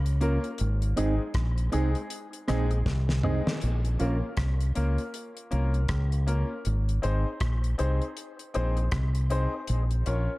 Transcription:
Already playing: C#2
0.06 closed hi-hat
0.21 A#3 C#4 F4 A#4, closed hi-hat
0.44 F4 A#4, closed hi-hat
0.58 G#1, closed hi-hat
0.82 closed hi-hat
0.96 G#1 G#3 C4 D#4 G#4, closed hi-hat
1.34 A#1, kick, cross-stick, closed hi-hat
1.58 closed hi-hat
1.72 C2 G#3 C4 D#4 G#4, closed hi-hat
1.95 closed hi-hat
2.10 closed hi-hat
2.33 closed hi-hat
2.48 A#1 G#3 C4 D#4 G#4, cross-stick, closed hi-hat
2.71 D#4 G#4, muted clean electric guitar stroke, closed hi-hat
2.86 C2, kick, snare
3.09 snare
3.23 G#3 C4 D#4 G#4, mid tom
3.47 D#4 G#4, snare
3.61 A#1, closed hi-hat
3.85 closed hi-hat
3.99 A#1 A#3 C#4 F4 A#4, closed hi-hat
4.37 C2, kick, cross-stick, closed hi-hat
4.61 closed hi-hat
4.75 C#2 A#3 C#4 F4 A#4, closed hi-hat
4.98 closed hi-hat
5.14 closed hi-hat
5.37 closed hi-hat
5.51 C2 A#3 C#4 F4 A#4, closed hi-hat
5.74 F4 A#4, closed hi-hat
5.88 C#2, kick, cross-stick, closed hi-hat
6.12 closed hi-hat
6.27 A#3 C#4 F4 A#4, closed hi-hat
6.50 F4 A#4
6.65 G#1, closed hi-hat
6.89 closed hi-hat
7.02 G#1 C4 D#4 G#4 C5, closed hi-hat
7.40 A#1, kick, cross-stick, closed hi-hat
7.64 closed hi-hat
7.78 C2 C4 D#4 G#4 C5, closed hi-hat
8.02 closed hi-hat
8.17 closed hi-hat
8.39 closed hi-hat
8.54 A#1 C4 D#4 G#4 C5, closed hi-hat
8.77 G#4 C5, closed hi-hat
8.92 C2, kick, cross-stick, closed hi-hat
9.15 closed hi-hat
9.30 C4 D#4 G#4 C5, closed hi-hat
9.54 G#4 C5
9.67 A#1, closed hi-hat
9.91 closed hi-hat
10.06 A#1 C#4 F4 A#4 C#5, closed hi-hat

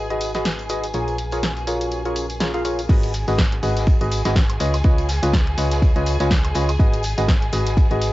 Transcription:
Already playing: G#1 F#4 G#4 B4 G#5
0.10 F#4 G#4 B4 D#5, closed hi-hat
0.21 closed hi-hat, tambourine
0.34 F#4 G#4 B4 D#5, snare, closed hi-hat, tambourine
0.45 snare, closed hi-hat, tambourine
0.59 closed hi-hat, tambourine
0.69 F#4 G#4 B4 D#5, closed hi-hat, tambourine
0.84 closed hi-hat, tambourine
0.94 A#1 C#4 F4 G#4 A#4 C#5, closed hi-hat, tambourine
1.08 closed hi-hat, tambourine
1.19 A#4, closed hi-hat, tambourine
1.32 F4 G#4 A#4 C#5, closed hi-hat, tambourine
1.43 snare, closed hi-hat, tambourine
1.57 closed hi-hat, tambourine
1.67 F4 G#4 A#4 C#5, closed hi-hat, tambourine
1.81 closed hi-hat, tambourine
1.91 closed hi-hat, tambourine
2.05 F4 G#4 A#4 C#5, closed hi-hat, tambourine
2.16 closed hi-hat, tambourine
2.30 closed hi-hat, tambourine
2.41 F4 G#4 A#4 C#5, snare, closed hi-hat, tambourine
2.54 F4 G#4 A#4 F5, closed hi-hat, tambourine
2.65 F4 G#4 A#4 C#5, closed hi-hat, tambourine
2.79 closed hi-hat, tambourine
2.89 G#1 F#4 G#4 B4 D#5 G#5, kick, crash, ride, tambourine
3.03 closed hi-hat, ride, tambourine
3.14 open hi-hat, ride, tambourine
3.28 G#1 F#4 G#4 B4 D#5, closed hi-hat, tambourine
3.37 kick, snare, ride, tambourine
3.52 closed hi-hat, ride
3.62 G#1 F#4 G#4 B4 D#5, open hi-hat, ride, tambourine
3.76 snare, closed hi-hat, tambourine
3.86 kick, ride, tambourine
4.01 G#1 F#4 G#4 B4 D#5, closed hi-hat, tambourine
4.11 open hi-hat, ride, tambourine
4.25 G#1 F#4 G#4 B4 D#5, snare, closed hi-hat, tambourine
4.35 kick, snare, ride, tambourine
4.50 closed hi-hat, high woodblock
4.60 C#2 F4 B4 C#5 D#5, open hi-hat, ride, tambourine
4.74 closed hi-hat, tambourine, high woodblock
4.84 C#2 F4 B4 C#5 D#5, kick, ride, tambourine
4.98 closed hi-hat, tambourine
5.08 snare, open hi-hat, ride, tambourine
5.22 C#2 F4 B4 C#5 D#5, closed hi-hat, tambourine
5.33 kick, snare, ride, tambourine
5.47 closed hi-hat
5.57 C#2 F4 B4 C#5 D#5, open hi-hat, ride, tambourine
5.71 snare, closed hi-hat, tambourine
5.82 kick, ride, tambourine
5.96 C#2 F4 B4 C#5 D#5, closed hi-hat, tambourine
6.06 open hi-hat, ride, tambourine
6.20 C#2 F4 B4 C#5 D#5, closed hi-hat, tambourine
6.31 kick, snare, open hi-hat, ride, tambourine
6.45 closed hi-hat, high woodblock
6.55 C#2 F4 B4 C#5 D#5, open hi-hat, ride, tambourine
6.69 closed hi-hat, tambourine, high woodblock
6.80 G#1 F#4 G#4 B4 D#5, kick, ride, tambourine
6.92 closed hi-hat, ride, tambourine
7.03 open hi-hat, ride, tambourine
7.04 tambourine
7.18 G#1 F#4 G#4 B4 D#5, closed hi-hat, tambourine
7.28 kick, snare, ride, tambourine
7.42 closed hi-hat, ride
7.53 G#1 F#4 G#4 B4 D#5, open hi-hat, ride, tambourine
7.66 snare, closed hi-hat, tambourine
7.77 kick, ride, tambourine
7.91 G#1 F#4 G#4 B4 D#5, closed hi-hat, tambourine
8.01 open hi-hat, ride, tambourine

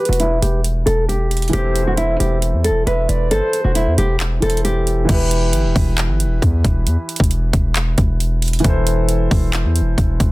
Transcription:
Already playing: E3 E4 G4 B4
0.05 E1 F#4, closed hi-hat
0.13 closed hi-hat
0.20 E4, closed hi-hat
0.42 E1 G4, closed hi-hat
0.64 closed hi-hat
0.86 E1 A4, closed hi-hat
1.09 G4, closed hi-hat
1.31 closed hi-hat
1.37 closed hi-hat
1.42 closed hi-hat
1.48 E3, closed hi-hat
1.52 E1 E4 G4 A4 C5, closed hi-hat
1.58 C4
1.76 closed hi-hat
1.87 F#4
1.97 E4, closed hi-hat
2.20 E1 G4, closed hi-hat
2.42 closed hi-hat
2.53 E2
2.64 A4, closed hi-hat
2.70 E1
2.87 E1 B4 E5, closed hi-hat
3.09 E1 D5, closed hi-hat
3.31 G1 A4 C5, closed hi-hat
3.53 closed hi-hat
3.64 E1 F#4
3.75 E4, closed hi-hat
3.87 E2
3.98 E1 G4, closed hi-hat
4.20 clap, closed hi-hat
4.40 E1 E3 E4 A4, closed hi-hat
4.44 C5
4.50 closed hi-hat
4.57 closed hi-hat
4.65 G4, closed hi-hat
4.87 closed hi-hat
5.05 E3 E4
5.09 E1 G4, kick, closed hi-hat, crash
5.13 B4
5.31 closed hi-hat
5.53 G1, closed hi-hat
5.64 E1
5.76 E1, kick, open hi-hat
5.98 clap, closed hi-hat
6.09 G1
6.20 closed hi-hat
6.26 E1
6.42 E2, kick, closed hi-hat
6.64 E1, kick, closed hi-hat
6.87 E2, closed hi-hat
7.09 closed hi-hat
7.16 E1, kick, closed hi-hat
7.24 closed hi-hat
7.31 closed hi-hat
7.53 E1, kick, closed hi-hat
7.75 clap, closed hi-hat
7.98 E1, kick, closed hi-hat
8.20 closed hi-hat
8.42 closed hi-hat, open hi-hat
8.48 closed hi-hat
8.53 closed hi-hat
8.59 E3 E4, closed hi-hat
8.64 E1 A4, kick, closed hi-hat
8.69 C5
8.87 closed hi-hat
9.09 closed hi-hat
9.31 E1, kick, open hi-hat
9.53 clap, closed hi-hat
9.64 E2
9.76 closed hi-hat
9.81 E1
9.98 E1, kick, closed hi-hat
10.20 E1, kick, closed hi-hat

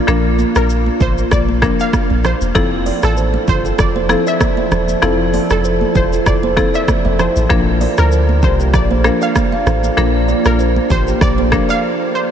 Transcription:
Already playing: A#3 D4 F4
0.07 A#1 F3 A#3 D4 A#4, cross-stick, low conga, shaker
0.39 high conga, shaker
0.55 A#1 A#4, cross-stick, shaker
0.70 shaker
0.86 high conga
1.00 A1 C5, kick, low conga, shaker
1.18 shaker
1.31 A#1 D5, kick, cross-stick, low conga, shaker
1.49 high conga
1.62 F3 A#3 D4 A#4, kick, cross-stick, high conga, shaker
1.80 F5, shaker
1.93 kick, cross-stick, high conga, shaker
2.10 A#1, high conga
2.24 C5, cross-stick, low conga, shaker
2.41 E1, high conga, shaker
2.55 F1 F3 C4 E4 F4 A4, kick, cross-stick, low conga, shaker
2.86 A#4 D5, open hi-hat, high conga, shaker
3.03 A1 A4, cross-stick, shaker
3.17 A4 C5, shaker
3.34 high conga
3.48 G1 F4 A4 C5, kick, low conga, shaker
3.65 F4 A4, shaker
3.78 F1 D5, kick, cross-stick, low conga, shaker
3.96 A4 C5, high conga
4.09 F3 C4 E4 A4, cross-stick, high conga, shaker
4.27 A#4 D5 E5, shaker
4.40 kick, cross-stick, high conga, shaker
4.57 C5 E5, high conga
4.72 E1 A4 C5, cross-stick, low conga, shaker
4.88 high conga, shaker
5.02 F1 F3 C4 E4 F4 A4, cross-stick, low conga, shaker
5.34 A#4 D5, open hi-hat, high conga, shaker
5.50 F1 A4, cross-stick, shaker
5.64 A4 C5, shaker
5.81 high conga
5.95 E1 F4 A4 C5, kick, low conga, shaker
6.12 F4 A4, shaker
6.26 F1 D5, kick, cross-stick, low conga, shaker
6.43 A4 C5, high conga
6.57 F3 C4 E4 A4, kick, cross-stick, high conga, shaker
6.74 A#4 D5 E5, shaker
6.88 kick, cross-stick, high conga, shaker
7.05 F1 C5 E5, high conga
7.19 A4 C5, cross-stick, low conga, shaker
7.36 A1, high conga, shaker
7.50 A#1 F3 A#3 D4 F4 A#4, kick, cross-stick, low conga, shaker
7.81 A#4 D5, open hi-hat, high conga, shaker
7.97 D2 A#4, cross-stick, shaker
8.12 F4 C5, shaker
8.29 high conga
8.42 C2 G4 A#4 C5, kick, low conga, shaker
8.60 G4 A#4, shaker
8.74 A#1 D5, kick, cross-stick, low conga, shaker
8.91 A4 C5, high conga
9.04 F3 A#3 D4 A#4, cross-stick, high conga, shaker
9.22 A#4 D5 F5, shaker
9.35 kick, cross-stick, high conga, shaker
9.52 D5 F5, high conga
9.66 A1 A4 C5, cross-stick, low conga, shaker
9.83 high conga, shaker
9.97 A#1 F3 A#3 D4 F4 A#4, cross-stick, low conga, shaker
10.28 A#4 D5, high conga, shaker
10.45 A#1 A#4, cross-stick, shaker
10.59 F4 C5, shaker
10.76 high conga
10.90 A1 G4 A#4 C5, kick, low conga, shaker
11.07 G4 A#4, shaker
11.21 A#1 D5, kick, cross-stick, low conga, shaker
11.38 A4 C5, high conga
11.52 F3 A#3 D4 A#4, kick, cross-stick, high conga, shaker
11.69 A#4 D5 F5, shaker
12.15 C5

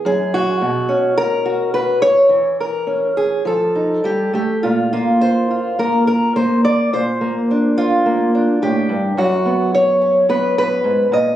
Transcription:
0.05 F#2 G#4
0.34 F#4
0.61 B2
0.89 C#4
1.18 A#4
1.46 F#4
1.74 B4
2.02 C#5
2.29 E3
2.60 A#4
2.87 C#4
3.17 G#4
3.45 F3 A4
3.75 D#4
4.04 G3 G4
4.33 A3 G4
4.63 A#2 F4
4.93 A#3 F4
5.21 C5
5.51 F4
5.79 A#3 A#4
6.07 A#4
6.36 A#3 C5
6.65 D5
6.93 A#2 C5
7.21 A#3
7.51 D4
7.78 F4
8.06 A#3
8.35 D4
8.62 A2 G4
8.89 G2
9.17 F#2 F#4
9.46 B3
9.75 C#5
10.02 C#4
10.29 B3 B4
10.58 B4
10.84 G#2
11.12 A#2 D#5

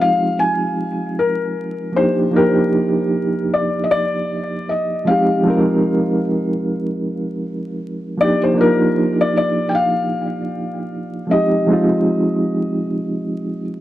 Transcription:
Already playing: F3 G#3 C4 D#4 F4 G4
0.01 F5
0.39 G#5
1.19 A#4
1.92 F3 A#3 D4
1.96 D#4 G4 C5
2.31 F3 A#3 D4
2.36 D#4 G4 A#4
3.54 D5
3.84 D#5
3.91 D5
4.69 D#5
5.05 F3 G#3 C4 F5
5.10 D#4 G4
5.44 F3 G#3 C4
5.48 D#4 A#4
8.17 F3 A#3 D4 D5
8.22 D#4 G4
8.43 C5
8.54 F3 A#3 D4
8.59 D#4 F4 A#4
9.21 D5
9.37 D5
9.69 G5
9.75 F5
11.27 F3 G#3 C4
11.31 D#4 G4 D#5
11.67 F3 G#3 C4
11.72 D#4 F4

